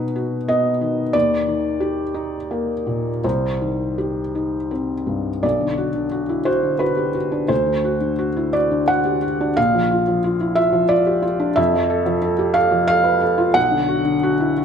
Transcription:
0.00 1.10 B2 medium
0.00 0.49 B3 soft
0.00 0.35 D#4 soft
0.00 0.48 B4 medium
0.16 0.68 F#4 soft
0.48 1.01 B3 soft
0.48 1.14 D#5 medium
0.81 1.14 D#3 soft
1.13 3.20 D#2 medium
1.13 3.23 D5 medium
1.48 2.02 D#3 soft
1.80 2.36 G4 medium
2.14 2.72 D#4 soft
2.51 3.09 A#3 soft
2.87 3.24 A#2 soft
3.24 5.40 C2 medium
3.24 4.71 C5 medium
3.61 4.20 D#3 soft
3.98 4.56 G4 soft
4.35 4.93 D#4 soft
4.71 5.29 C4 soft
5.07 5.43 G2 soft
5.43 7.46 B1 medium
5.43 6.47 D5 medium
5.60 5.89 D3 soft
5.78 6.06 F#4 soft
5.95 6.23 D3 soft
6.11 6.40 F#4 soft
6.29 6.47 E4 soft
6.45 6.74 F#4 soft
6.45 6.81 C5 medium
6.63 6.91 D3 soft
6.79 7.08 F#4 soft
6.79 7.49 B4 medium
6.97 7.15 G4 soft
7.15 7.43 F#4 soft
7.32 7.49 D4 soft
7.48 9.52 D2 medium
7.48 8.53 C5 medium
7.66 7.94 D3 soft
7.84 8.12 F#4 medium
8.01 8.29 D3 soft
8.19 8.47 F#4 medium
8.37 8.54 E4 soft
8.53 8.81 F#4 medium
8.53 8.88 D5 medium
8.71 8.99 D3 soft
8.88 9.16 F#4 medium
8.88 9.56 F#5 medium
9.05 9.22 G4 soft
9.22 9.50 F#4 medium
9.41 9.57 D4 medium
9.57 11.54 A#1 medium
9.57 10.58 F5 medium
9.75 10.01 F3 medium
9.91 10.18 F4 medium
10.08 10.35 F3 soft
10.24 10.51 F4 medium
10.40 10.58 E4 medium
10.55 10.84 F4 medium
10.55 10.90 E5 medium
10.73 11.00 F3 medium
10.89 11.17 F4 medium
10.89 11.56 D5 medium
11.07 11.24 G4 medium
11.22 11.50 F4 medium
11.40 11.57 D4 medium
11.56 13.51 F2 medium
11.56 12.55 E5 medium
11.73 12.00 F3 medium
11.90 12.17 A4 medium
12.06 12.33 F3 medium
12.22 12.49 A4 medium
12.39 12.56 G4 medium
12.54 12.82 A4 medium
12.54 12.86 F5 medium
12.71 12.98 F3 medium
12.88 13.15 A4 medium
12.88 13.55 F5 loud
13.04 13.21 B4 medium
13.21 13.49 A4 medium
13.38 13.55 F4 medium
13.54 14.65 B1 medium
13.54 14.65 F#5 loud
13.71 13.99 D3 medium
13.88 14.16 F#4 medium
14.05 14.33 D3 medium
14.23 14.51 F#4 medium
14.40 14.57 E4 medium
14.57 14.65 F#4 medium

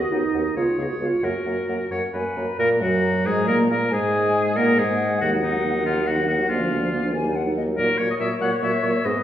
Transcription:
0.00 0.13 F#4 medium
0.00 0.52 D#5 medium
0.11 0.22 D#2 medium
0.11 0.23 B3 soft
0.11 0.56 D#4 medium
0.11 0.17 F#5 soft
0.34 0.44 D#2 soft
0.34 0.44 B3 soft
0.34 0.40 F#5 soft
0.56 0.66 C#2 soft
0.56 0.67 B3 soft
0.56 0.78 F4 medium
0.56 1.25 C#5 medium
0.56 0.62 F5 soft
0.78 0.89 C#2 soft
0.78 0.89 B3 soft
0.78 0.84 G#4 medium
0.78 0.84 F5 soft
0.91 0.96 F#4 medium
1.00 1.11 C#2 soft
1.00 1.11 B3 soft
1.00 1.23 F4 medium
1.00 1.07 F5 soft
1.22 1.34 F#2 medium
1.22 1.34 A#3 soft
1.22 1.90 F#4 medium
1.22 1.91 A#4 soft
1.22 1.28 F#5 soft
1.45 1.56 F#2 soft
1.45 1.56 A#3 soft
1.45 1.51 F#5 soft
1.69 1.79 F#2 soft
1.69 1.79 A#3 soft
1.69 1.75 F#5 soft
1.91 2.01 F#2 soft
1.91 2.02 A#3 soft
1.91 2.01 C#5 medium
1.91 2.12 F#5 medium
2.14 2.24 F#2 soft
2.14 2.25 A#3 soft
2.14 2.58 B4 medium
2.14 2.38 G#5 medium
2.37 2.47 F#2 soft
2.37 2.47 A#3 soft
2.37 2.59 A#5 medium
2.59 2.83 A#2 medium
2.59 2.69 A#3 medium
2.59 2.83 A#3 medium
2.59 2.69 A#4 medium
2.81 3.25 F#2 medium
2.81 3.27 F#3 medium
2.81 3.28 F#3 medium
2.81 3.28 F#4 medium
3.25 3.49 G#2 medium
3.25 3.49 G#3 medium
3.25 3.50 G#3 medium
3.25 3.47 G#4 medium
3.25 3.92 A#5 medium
3.48 3.69 A#2 medium
3.48 3.70 A#3 medium
3.48 3.58 A#4 medium
3.70 3.91 A#2 medium
3.70 3.80 A#3 medium
3.70 3.92 A#4 medium
3.90 4.58 G#2 medium
3.90 4.55 G#3 medium
3.90 4.58 G#3 medium
3.90 4.58 G#4 medium
3.90 4.56 G#5 medium
4.56 4.79 A#2 medium
4.56 4.77 A#3 medium
4.56 4.78 A#3 medium
4.56 4.80 A#4 medium
4.56 6.51 F#5 medium
4.78 5.20 G#2 medium
4.78 5.20 G#3 medium
4.78 5.21 G#4 medium
5.21 6.45 D#2 medium
5.21 5.34 D#3 medium
5.21 5.34 A#3 medium
5.21 5.31 F#4 medium
5.32 5.44 F#3 medium
5.32 5.45 D#4 soft
5.43 5.56 D#3 soft
5.43 5.54 A#3 soft
5.43 5.85 D#4 medium
5.53 5.64 F#3 medium
5.53 5.63 D#4 soft
5.63 5.76 D#3 medium
5.63 5.75 A#3 medium
5.74 5.87 F#3 soft
5.74 5.86 D#4 soft
5.84 5.98 D#3 medium
5.84 5.96 A#3 soft
5.84 6.08 F4 medium
5.94 6.06 F#3 soft
5.94 6.05 D#4 soft
6.06 6.18 D#3 medium
6.06 6.18 A#3 medium
6.06 6.28 F#4 medium
6.16 6.30 F#3 soft
6.16 6.28 D#4 soft
6.26 6.40 D#3 soft
6.26 6.39 A#3 soft
6.26 6.48 F#4 medium
6.37 6.49 F#3 soft
6.37 6.47 D#4 soft
6.47 7.16 D2 medium
6.47 6.61 D3 medium
6.47 6.60 A#3 medium
6.47 7.12 F4 medium
6.47 7.13 F5 medium
6.58 6.72 F3 medium
6.58 6.71 D4 soft
6.69 6.82 D3 soft
6.69 6.82 A#3 soft
6.80 6.92 F3 medium
6.80 6.91 D4 soft
6.92 7.04 D3 soft
6.92 7.04 A#3 medium
7.02 7.13 F3 soft
7.02 7.13 D4 soft
7.13 7.78 D#2 medium
7.13 7.25 D#3 soft
7.13 7.26 A#3 medium
7.13 7.37 G#5 medium
7.24 7.36 F#3 soft
7.24 7.37 D#4 soft
7.35 7.47 D#3 medium
7.35 7.47 A#3 soft
7.35 7.56 F#5 medium
7.46 7.55 F#3 soft
7.46 7.56 D#4 soft
7.56 7.68 D#3 soft
7.56 7.68 A#3 soft
7.56 7.63 D#5 medium
7.67 7.76 F#3 soft
7.67 7.77 D#4 soft
7.77 7.88 A#2 medium
7.77 7.87 F#3 medium
7.77 7.87 A#3 medium
7.77 7.99 A#4 medium
7.77 9.06 C#5 medium
7.98 8.09 A#2 medium
7.98 8.08 F#3 soft
7.98 8.08 A#3 medium
7.98 8.09 C#5 medium
8.10 8.15 D#5 medium
8.19 8.29 A#2 medium
8.19 8.30 F#3 soft
8.19 8.29 A#3 soft
8.19 8.30 E5 medium
8.41 8.50 A#2 medium
8.41 8.50 F#3 soft
8.41 8.50 A#3 soft
8.41 8.51 F#5 medium
8.62 8.72 A#2 medium
8.62 8.72 F#3 medium
8.62 8.72 A#3 soft
8.62 9.07 E5 medium
8.83 8.93 A#2 medium
8.83 8.93 F#3 soft
8.83 8.94 A#3 soft
9.04 9.15 G#2 medium
9.04 9.15 G#3 soft
9.04 9.14 B3 soft
9.04 9.23 B4 medium
9.04 9.23 D#5 medium

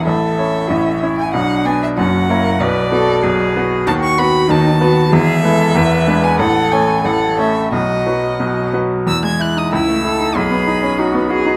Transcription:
0.05 0.38 A1 medium
0.05 0.38 A2 medium
0.05 0.72 A4 medium
0.05 1.15 E5 loud
0.38 0.67 C#4 medium
0.38 0.67 E4 soft
0.38 0.68 C#5 medium
0.70 1.01 A1 medium
0.70 1.01 A2 medium
0.70 1.04 C#4 medium
1.03 1.31 C#4 medium
1.03 1.36 E4 medium
1.03 1.31 E4 medium
1.03 1.31 C#5 medium
1.18 1.33 G#5 medium
1.33 1.64 B1 medium
1.33 1.64 B2 medium
1.33 1.99 D4 medium
1.33 1.66 F#5 loud
1.65 1.94 B3 medium
1.65 1.94 D4 medium
1.65 1.94 D5 medium
1.65 1.81 G#5 loud
1.83 1.89 E5 medium
1.97 2.28 F#1 medium
1.97 2.28 F#2 medium
1.97 2.30 F#4 medium
1.97 2.62 F#5 loud
2.29 2.57 A#3 medium
2.29 2.58 E4 medium
2.29 2.60 A#4 medium
2.29 2.58 C#5 medium
2.60 2.91 B1 medium
2.60 2.91 B2 medium
2.60 2.91 B4 medium
2.60 3.56 D5 loud
2.92 3.21 B3 medium
2.92 3.21 F#4 medium
2.92 3.24 A4 medium
2.92 3.21 B4 medium
3.23 3.55 B1 medium
3.23 3.55 B2 medium
3.23 3.87 G#4 medium
3.56 3.84 B3 medium
3.56 3.84 F#4 medium
3.56 3.84 B4 medium
3.86 4.17 D#2 medium
3.86 4.17 D#3 medium
3.86 4.50 F#4 medium
3.86 3.93 A5 loud
4.03 4.19 C#6 loud
4.18 4.46 B3 medium
4.18 4.46 F#4 medium
4.18 4.47 B4 medium
4.18 4.51 B5 loud
4.49 4.80 D#2 medium
4.49 4.79 D#3 medium
4.49 4.80 D#4 medium
4.49 5.14 A5 loud
4.80 5.09 B3 medium
4.80 5.11 F#4 medium
4.80 5.09 F#4 medium
4.80 5.09 B4 medium
5.12 5.43 E1 medium
5.12 5.43 E2 medium
5.12 5.42 G#4 medium
5.12 6.25 E5 loud
5.43 5.72 G#3 medium
5.43 5.72 E4 medium
5.43 5.77 A4 loud
5.43 5.73 B4 medium
5.75 6.06 E1 medium
5.75 6.06 E2 medium
5.75 6.40 B4 loud
6.07 6.36 G#3 medium
6.07 6.36 D4 medium
6.07 6.36 B4 medium
6.24 6.39 G#5 loud
6.38 6.71 A1 medium
6.38 6.71 A2 medium
6.38 7.03 A4 loud
6.38 6.73 F#5 loud
6.71 7.02 A3 medium
6.71 7.02 C#4 medium
6.71 7.02 C#5 medium
6.71 7.06 G#5 loud
7.04 7.37 A1 medium
7.04 7.37 A2 medium
7.04 7.71 A4 medium
7.04 7.38 F#5 loud
7.38 7.69 A3 medium
7.38 7.69 C#4 medium
7.38 7.69 C#5 medium
7.38 7.72 E5 medium
7.72 8.06 B1 medium
7.72 8.05 B2 medium
7.72 8.72 F#4 medium
7.72 8.72 D#5 loud
8.07 8.37 F#3 medium
8.07 8.37 F#4 medium
8.07 8.38 B4 medium
8.40 8.73 B1 medium
8.40 8.73 B2 medium
8.74 9.04 F#3 soft
8.74 9.04 F#4 medium
8.74 9.04 B4 medium
9.07 9.70 E2 medium
9.07 9.22 E6 loud
9.23 9.49 G#3 medium
9.23 9.42 G#6 medium
9.40 9.66 E4 medium
9.40 9.59 F#6 loud
9.57 9.72 D#4 medium
9.57 9.72 D#6 medium
9.72 10.34 C#2 medium
9.72 10.02 E4 medium
9.72 10.37 E6 loud
9.88 10.14 A3 medium
10.04 10.29 E4 medium
10.04 10.35 A4 medium
10.20 10.36 D#4 medium
10.35 11.57 B1 medium
10.35 11.00 G#4 medium
10.35 11.30 B5 loud
10.51 10.76 B3 medium
10.67 10.92 D#4 medium
10.83 10.98 C#4 medium
10.98 11.24 D#4 medium
10.98 11.29 F#4 medium
11.14 11.40 B3 medium
11.30 11.55 F#4 medium
11.30 11.57 G#4 loud
11.46 11.57 D#4 medium

